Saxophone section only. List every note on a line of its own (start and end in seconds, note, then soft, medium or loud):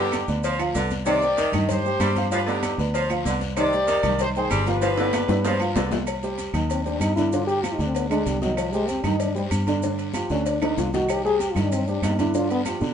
0.00 0.22 D3 medium
0.44 0.60 F3 medium
0.75 0.92 D3 medium
1.06 1.23 C3 medium
1.38 1.73 D#3 medium
2.00 2.16 G3 medium
2.32 2.40 F3 medium
2.46 2.72 D3 medium
2.95 3.11 F3 medium
3.25 3.42 D3 medium
3.57 3.74 C3 loud
3.88 4.24 D#3 medium
4.50 4.67 G3 medium
4.82 4.90 F3 medium
4.97 5.22 D3 medium
5.45 5.61 F3 loud
5.75 5.92 D3 medium